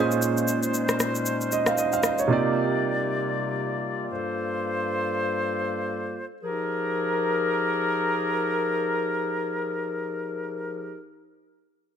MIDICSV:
0, 0, Header, 1, 4, 480
1, 0, Start_track
1, 0, Key_signature, -4, "minor"
1, 0, Tempo, 517241
1, 206, Time_signature, 4, 2, 24, 8
1, 11104, End_track
2, 0, Start_track
2, 0, Title_t, "Grand piano"
2, 0, Program_c, 0, 0
2, 0, Note_on_c, 0, 46, 75
2, 0, Note_on_c, 0, 61, 67
2, 0, Note_on_c, 0, 63, 65
2, 0, Note_on_c, 0, 65, 66
2, 0, Note_on_c, 0, 68, 66
2, 0, Note_on_c, 0, 72, 81
2, 145, Control_c, 0, 64, 127
2, 1394, Note_off_c, 0, 72, 0
2, 1415, Note_on_c, 0, 75, 66
2, 1543, Note_off_c, 0, 75, 0
2, 1553, Note_on_c, 0, 77, 67
2, 1645, Note_off_c, 0, 77, 0
2, 1654, Note_on_c, 0, 75, 67
2, 1782, Note_off_c, 0, 75, 0
2, 1794, Note_on_c, 0, 77, 72
2, 1841, Note_off_c, 0, 46, 0
2, 1846, Note_off_c, 0, 61, 0
2, 1850, Note_off_c, 0, 63, 0
2, 1855, Note_off_c, 0, 65, 0
2, 1860, Note_off_c, 0, 68, 0
2, 1885, Note_off_c, 0, 77, 0
2, 1895, Note_on_c, 0, 75, 64
2, 2023, Note_off_c, 0, 75, 0
2, 2034, Note_on_c, 0, 73, 60
2, 2110, Note_on_c, 0, 48, 77
2, 2120, Note_on_c, 0, 58, 69
2, 2130, Note_on_c, 0, 63, 68
2, 2138, Control_c, 0, 64, 0
2, 2139, Note_on_c, 0, 65, 68
2, 2149, Note_on_c, 0, 67, 67
2, 2159, Note_on_c, 0, 74, 84
2, 2258, Note_off_c, 0, 73, 0
2, 2317, Control_c, 0, 64, 127
2, 3764, Note_off_c, 0, 48, 0
2, 3769, Note_off_c, 0, 58, 0
2, 3774, Note_off_c, 0, 63, 0
2, 3779, Note_off_c, 0, 65, 0
2, 3784, Note_off_c, 0, 67, 0
2, 3789, Note_off_c, 0, 74, 0
2, 3819, Control_c, 0, 64, 0
2, 11104, End_track
3, 0, Start_track
3, 0, Title_t, "Woodwind section"
3, 0, Program_c, 1, 71
3, 0, Note_on_c, 1, 46, 74
3, 0, Note_on_c, 1, 56, 70
3, 0, Note_on_c, 1, 61, 72
3, 0, Note_on_c, 1, 63, 69
3, 0, Note_on_c, 1, 72, 86
3, 2089, Note_off_c, 1, 56, 0
3, 2105, Note_off_c, 1, 46, 0
3, 2105, Note_off_c, 1, 61, 0
3, 2105, Note_off_c, 1, 72, 0
3, 2127, Note_on_c, 1, 55, 70
3, 2127, Note_on_c, 1, 74, 82
3, 2128, Note_on_c, 1, 48, 74
3, 2128, Note_on_c, 1, 58, 71
3, 2128, Note_on_c, 1, 65, 72
3, 3769, Note_off_c, 1, 63, 0
3, 3790, Note_off_c, 1, 48, 0
3, 3790, Note_off_c, 1, 55, 0
3, 3790, Note_off_c, 1, 74, 0
3, 3806, Note_on_c, 1, 55, 70
3, 3806, Note_on_c, 1, 69, 68
3, 3807, Note_on_c, 1, 72, 84
3, 3808, Note_on_c, 1, 43, 73
3, 5806, Note_off_c, 1, 43, 0
3, 5806, Note_off_c, 1, 55, 0
3, 5806, Note_off_c, 1, 58, 0
3, 5806, Note_off_c, 1, 65, 0
3, 5806, Note_off_c, 1, 69, 0
3, 5806, Note_off_c, 1, 72, 0
3, 5964, Note_on_c, 1, 63, 67
3, 5964, Note_on_c, 1, 67, 70
3, 5964, Note_on_c, 1, 68, 68
3, 5964, Note_on_c, 1, 70, 83
3, 5965, Note_on_c, 1, 53, 75
3, 10210, Note_off_c, 1, 63, 0
3, 10210, Note_off_c, 1, 67, 0
3, 10210, Note_off_c, 1, 68, 0
3, 10210, Note_off_c, 1, 70, 0
3, 10211, Note_off_c, 1, 53, 0
3, 11104, End_track
4, 0, Start_track
4, 0, Title_t, "Drums"
4, 105, Note_on_c, 9, 82, 46
4, 198, Note_off_c, 9, 82, 0
4, 205, Note_on_c, 9, 82, 86
4, 298, Note_off_c, 9, 82, 0
4, 347, Note_on_c, 9, 82, 46
4, 440, Note_off_c, 9, 82, 0
4, 445, Note_on_c, 9, 82, 95
4, 538, Note_off_c, 9, 82, 0
4, 584, Note_on_c, 9, 82, 61
4, 677, Note_off_c, 9, 82, 0
4, 688, Note_on_c, 9, 82, 68
4, 781, Note_off_c, 9, 82, 0
4, 824, Note_on_c, 9, 37, 91
4, 824, Note_on_c, 9, 82, 60
4, 917, Note_off_c, 9, 37, 0
4, 917, Note_off_c, 9, 82, 0
4, 927, Note_on_c, 9, 82, 88
4, 929, Note_on_c, 9, 37, 93
4, 1020, Note_off_c, 9, 82, 0
4, 1022, Note_off_c, 9, 37, 0
4, 1069, Note_on_c, 9, 82, 50
4, 1162, Note_off_c, 9, 82, 0
4, 1167, Note_on_c, 9, 82, 71
4, 1260, Note_off_c, 9, 82, 0
4, 1309, Note_on_c, 9, 82, 38
4, 1401, Note_off_c, 9, 82, 0
4, 1408, Note_on_c, 9, 82, 89
4, 1501, Note_off_c, 9, 82, 0
4, 1544, Note_on_c, 9, 37, 93
4, 1548, Note_on_c, 9, 82, 53
4, 1636, Note_off_c, 9, 37, 0
4, 1641, Note_off_c, 9, 82, 0
4, 1649, Note_on_c, 9, 82, 77
4, 1742, Note_off_c, 9, 82, 0
4, 1788, Note_on_c, 9, 82, 50
4, 1881, Note_off_c, 9, 82, 0
4, 1887, Note_on_c, 9, 82, 83
4, 1888, Note_on_c, 9, 37, 94
4, 1980, Note_off_c, 9, 37, 0
4, 1980, Note_off_c, 9, 82, 0
4, 2027, Note_on_c, 9, 82, 47
4, 2120, Note_off_c, 9, 82, 0
4, 11104, End_track
0, 0, End_of_file